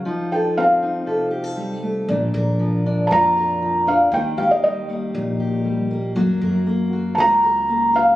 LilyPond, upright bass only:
\new Staff \with { instrumentName = "Upright bass" } { \clef bass \time 4/4 \key ees \lydian \tempo 4 = 118 r1 | bes,,8 bes,,4. f,2 | ees,8 ees,4. bes,,2 | ges,8 ges,4. des,2 | }